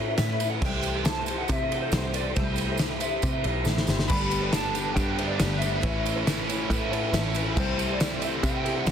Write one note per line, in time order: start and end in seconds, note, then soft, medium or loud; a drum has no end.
0.00 0.15 A2 medium
0.00 0.18 A3 medium
0.00 0.19 C#4 medium
0.00 0.18 E4 medium
0.00 0.35 E4 medium
0.00 0.35 A4 medium
0.00 8.92 A4 medium
0.00 0.19 B4 medium
0.00 0.36 B4 medium
0.00 0.36 C#5 medium
0.00 0.60 C#5 medium
0.00 0.14 E5 loud
0.00 0.60 B5 medium
0.15 0.59 A2 loud
0.15 0.40 A3 medium
0.15 0.40 E4 medium
0.15 0.50 E5 loud
0.15 snare loud
0.15 ride loud
0.15 tambourine medium
0.20 0.41 C#4 medium
0.20 0.39 B4 medium
0.40 0.63 C#4 soft
0.40 0.64 E4 soft
0.40 0.62 B4 medium
0.40 ride medium
0.40 tambourine medium
0.50 0.61 F#5 medium
0.61 1.45 C2 loud
0.61 1.07 C3 medium
0.61 0.82 G4 medium
0.61 0.82 A4 medium
0.61 0.82 C5 medium
0.61 4.06 E5 medium
0.61 0.83 E5 medium
0.61 1.04 G5 loud
0.61 2.33 C6 medium
0.61 kick loud
0.61 tambourine soft
0.61 crash loud
0.65 1.05 E3 medium
0.65 1.11 G3 medium
0.65 1.07 A3 medium
0.65 1.07 G4 medium
0.65 1.08 C5 medium
0.82 ride medium
0.82 tambourine medium
0.95 1.41 G4 medium
0.95 1.41 A4 medium
0.95 1.41 C5 medium
0.95 1.42 E5 medium
1.04 1.28 E3 medium
1.04 1.28 A3 medium
1.04 1.28 G4 medium
1.04 1.38 A5 loud
1.04 snare loud
1.04 ride medium
1.04 tambourine medium
1.09 1.26 C5 medium
1.26 1.50 G4 soft
1.26 1.49 C5 medium
1.26 ride medium
1.26 tambourine medium
1.31 1.47 E3 soft
1.31 1.48 A3 soft
1.38 1.49 F#5 medium
1.48 1.94 C3 loud
1.48 1.92 E3 medium
1.48 1.94 A3 medium
1.48 1.95 G4 medium
1.48 1.93 C5 medium
1.48 1.84 E5 loud
1.48 kick medium
1.48 ride loud
1.48 tambourine medium
1.72 2.11 G4 medium
1.72 2.12 A4 medium
1.72 2.11 C5 medium
1.72 2.12 F#5 medium
1.72 ride medium
1.81 2.11 C5 medium
1.92 2.33 C2 loud
1.92 2.14 E3 medium
1.92 2.15 A3 medium
1.92 2.16 G4 medium
1.92 snare loud
1.92 ride loud
1.92 tambourine medium
1.96 2.15 C5 medium
2.14 2.37 C5 medium
2.14 2.34 D5 medium
2.14 ride medium
2.14 tambourine medium
2.18 2.36 E3 soft
2.18 2.38 A3 soft
2.18 2.38 G4 soft
2.35 3.19 C2 loud
2.35 2.80 C3 medium
2.35 2.79 E3 medium
2.35 2.85 G3 medium
2.35 2.81 A3 medium
2.35 2.56 G4 medium
2.35 2.56 A4 medium
2.35 3.02 C5 loud
2.35 2.56 C5 medium
2.35 2.81 C5 medium
2.35 2.57 E5 medium
2.35 kick loud
2.35 ride loud
2.35 tambourine soft
2.39 2.82 G4 medium
2.39 7.55 B5 medium
2.56 ride medium
2.56 tambourine medium
2.69 3.15 G4 medium
2.69 3.15 A4 medium
2.69 3.15 C5 medium
2.69 3.16 E5 medium
2.78 3.01 E3 medium
2.78 snare loud
2.78 ride loud
2.78 tambourine medium
2.82 3.02 A3 medium
2.82 3.02 G4 medium
2.82 3.00 C5 medium
3.00 3.24 G4 medium
3.00 3.23 C5 medium
3.00 3.84 E5 medium
3.00 ride medium
3.00 tambourine medium
3.05 3.22 E3 soft
3.05 3.23 A3 soft
3.22 3.44 C3 loud
3.22 3.65 E3 medium
3.22 3.67 A3 medium
3.22 3.68 G4 medium
3.22 kick medium
3.22 ride loud
3.22 tambourine medium
3.27 3.68 C5 medium
3.43 3.64 B1 medium
3.43 3.84 G4 medium
3.43 3.84 A4 medium
3.43 3.84 C5 medium
3.43 3.84 E5 medium
3.43 ride medium
3.65 3.86 A1 medium
3.65 3.88 E3 medium
3.65 3.89 A3 medium
3.65 snare medium
3.65 tambourine medium
3.69 3.88 G4 medium
3.69 3.87 C5 medium
3.78 snare medium
3.87 4.08 G1 medium
3.87 4.10 E3 soft
3.87 4.09 A3 medium
3.87 4.10 G4 medium
3.87 4.10 C5 medium
3.87 snare medium
3.87 tambourine medium
3.99 snare medium
4.07 4.93 G1 loud
4.07 4.50 G2 medium
4.07 4.51 D3 medium
4.07 4.53 G3 medium
4.07 4.33 G3 medium
4.07 4.53 A3 medium
4.07 4.34 B3 medium
4.07 4.54 D4 medium
4.07 4.32 D4 medium
4.07 4.29 G4 medium
4.07 4.54 G4 medium
4.07 4.30 G4 medium
4.07 4.29 A4 medium
4.07 4.29 B4 medium
4.07 4.29 D5 medium
4.07 5.82 G5 medium
4.07 4.51 B5 loud
4.07 kick loud
4.07 crash loud
4.07 tambourine soft
4.12 4.56 B4 medium
4.31 4.51 G3 medium
4.31 4.54 B3 medium
4.31 4.53 D4 medium
4.31 4.54 G4 medium
4.31 ride medium
4.31 tambourine medium
4.40 4.87 G4 medium
4.40 4.88 A4 medium
4.40 4.88 B4 medium
4.40 4.88 D5 medium
4.51 4.96 G2 medium
4.51 4.96 D3 medium
4.51 4.76 G3 medium
4.51 4.75 A3 medium
4.51 4.76 B3 medium
4.51 4.75 D4 medium
4.51 4.74 D4 medium
4.51 4.73 G4 loud
4.51 4.73 G4 medium
4.51 4.93 A5 loud
4.51 snare loud
4.51 ride medium
4.51 tambourine medium
4.57 4.71 B4 medium
4.73 4.96 D4 soft
4.73 4.96 D4 medium
4.73 4.98 G4 medium
4.73 4.97 G4 medium
4.73 4.95 B4 medium
4.73 ride medium
4.73 tambourine medium
4.77 4.95 G3 medium
4.77 4.96 B3 medium
4.93 5.42 G2 medium
4.93 5.19 G3 medium
4.93 5.39 A3 medium
4.93 5.18 B3 medium
4.93 5.17 D4 medium
4.93 5.29 G5 loud
4.93 kick medium
4.93 ride loud
4.93 tambourine medium
4.98 5.40 D4 medium
4.98 5.41 G4 medium
4.98 5.17 G4 medium
4.98 5.41 B4 medium
5.17 5.39 G3 medium
5.17 5.40 B3 medium
5.17 5.41 D4 loud
5.17 5.57 G4 medium
5.17 5.42 G4 medium
5.17 5.58 A4 medium
5.17 5.58 B4 medium
5.17 5.58 E5 medium
5.17 ride medium
5.21 5.63 G2 medium
5.21 5.63 D3 medium
5.27 5.58 D5 medium
5.39 5.81 G1 loud
5.39 5.65 G3 medium
5.39 5.62 A3 medium
5.39 5.63 B3 medium
5.39 5.62 D4 medium
5.39 5.60 G4 medium
5.39 5.61 G4 medium
5.39 5.59 B4 medium
5.39 snare loud
5.39 ride loud
5.39 tambourine medium
5.58 5.83 G4 soft
5.58 5.82 G4 medium
5.58 5.81 B4 medium
5.58 7.30 E5 medium
5.58 ride medium
5.58 tambourine medium
5.63 5.84 G3 medium
5.63 5.83 B3 medium
5.63 5.81 D4 soft
5.63 5.83 D4 medium
5.81 6.66 A1 loud
5.81 6.24 A2 medium
5.81 6.26 E3 medium
5.81 6.25 A3 medium
5.81 6.26 C#4 loud
5.81 6.26 E4 medium
5.81 6.03 E4 medium
5.81 6.03 A4 medium
5.81 6.27 B4 medium
5.81 6.03 B4 medium
5.81 6.04 C#5 medium
5.81 kick loud
5.81 ride loud
5.81 tambourine soft
5.85 6.08 A3 loud
5.85 6.05 C#4 medium
5.85 6.05 E4 medium
5.85 7.57 C#5 medium
6.05 6.26 A3 medium
6.05 6.26 C#4 medium
6.05 6.28 E4 medium
6.05 ride medium
6.05 tambourine medium
6.14 6.61 E4 medium
6.14 6.62 A4 medium
6.14 6.62 B4 medium
6.14 6.62 C#5 loud
6.25 6.69 A2 medium
6.25 6.68 E3 medium
6.25 6.48 A3 medium
6.25 6.51 A3 loud
6.25 6.48 C#4 loud
6.25 6.48 C#4 medium
6.25 6.48 E4 medium
6.25 6.47 E4 loud
6.25 6.46 B4 medium
6.25 snare loud
6.25 ride loud
6.25 tambourine loud
6.47 6.69 A3 medium
6.47 6.70 C#4 soft
6.47 6.69 C#4 medium
6.47 6.71 E4 medium
6.47 6.70 E4 soft
6.47 6.70 B4 medium
6.47 ride medium
6.47 tambourine medium
6.68 7.14 A2 loud
6.68 6.92 E3 medium
6.68 6.92 A3 medium
6.68 7.15 A3 medium
6.68 6.90 C#4 medium
6.68 7.15 C#4 medium
6.68 6.90 E4 medium
6.68 7.16 E4 medium
6.68 kick medium
6.68 ride loud
6.68 tambourine medium
6.73 7.15 B4 medium
6.90 7.36 A2 medium
6.90 7.11 E3 medium
6.90 7.13 A3 medium
6.90 7.13 C#4 medium
6.90 7.14 E4 medium
6.90 7.31 E4 medium
6.90 7.31 A4 medium
6.90 7.31 B4 medium
6.90 7.32 C#5 medium
6.90 7.02 F#5 medium
6.90 ride medium
7.02 7.13 G5 medium
7.12 7.54 A1 loud
7.12 7.56 E3 medium
7.12 7.37 A3 medium
7.12 7.36 A3 medium
7.12 7.35 C#4 medium
7.12 7.33 E4 medium
7.12 7.54 A5 medium
7.12 snare loud
7.12 ride loud
7.12 tambourine medium
7.16 7.36 C#4 medium
7.16 7.37 E4 medium
7.16 7.34 B4 medium
7.34 7.57 A3 medium
7.34 7.56 C#4 medium
7.34 7.58 E4 medium
7.34 7.57 B4 medium
7.34 ride medium
7.34 tambourine medium
7.38 7.58 C#4 medium
7.38 7.57 E4 soft
7.55 8.40 C2 loud
7.55 8.00 C3 medium
7.55 8.01 E3 medium
7.55 8.00 E3 medium
7.55 8.05 G3 medium
7.55 7.82 G3 medium
7.55 8.01 A3 medium
7.55 7.80 C4 medium
7.55 7.76 E4 medium
7.55 7.78 E4 loud
7.55 7.76 G4 medium
7.55 8.03 G4 medium
7.55 7.76 A4 medium
7.55 7.76 C5 medium
7.55 8.01 C5 medium
7.55 8.92 C6 medium
7.55 kick loud
7.55 crash loud
7.55 tambourine soft
7.59 7.89 C5 medium
7.59 8.92 E5 medium
7.79 8.02 G3 medium
7.79 8.02 C4 medium
7.79 8.03 E4 medium
7.79 ride medium
7.79 tambourine medium
7.87 8.35 E4 medium
7.87 8.35 G4 medium
7.87 8.35 A4 medium
7.87 8.35 C5 medium
7.92 8.25 D5 loud
8.00 8.68 C3 medium
8.00 8.23 E3 medium
8.00 8.44 E3 medium
8.00 8.26 G3 medium
8.00 8.21 A3 medium
8.00 8.24 C4 medium
8.00 8.22 E4 loud
8.00 8.21 G4 medium
8.00 8.19 C5 medium
8.00 snare loud
8.00 ride medium
8.00 tambourine medium
8.20 8.42 E3 medium
8.20 8.43 A3 medium
8.20 8.47 E4 medium
8.20 8.44 G4 medium
8.20 8.43 C5 medium
8.20 8.28 E5 medium
8.20 ride medium
8.20 tambourine medium
8.24 8.45 G3 medium
8.24 8.45 C4 medium
8.43 8.88 C3 medium
8.43 8.66 E3 medium
8.43 8.67 G3 medium
8.43 8.87 A3 medium
8.43 8.65 C4 medium
8.43 8.89 G4 medium
8.43 8.88 C5 medium
8.43 8.76 G5 loud
8.43 kick loud
8.43 ride loud
8.43 tambourine medium
8.48 8.64 E4 medium
8.64 8.86 E3 medium
8.64 8.88 G3 medium
8.64 8.89 C4 medium
8.64 8.92 E4 medium
8.64 8.90 E4 loud
8.64 8.92 G4 medium
8.64 8.92 A4 medium
8.64 8.92 C5 medium
8.64 ride medium
8.68 8.92 C3 medium
8.76 8.92 F#5 loud
8.86 8.92 C2 loud
8.86 8.92 E3 medium
8.86 8.92 G3 medium
8.86 8.92 A3 medium
8.86 snare loud
8.86 ride loud
8.86 tambourine medium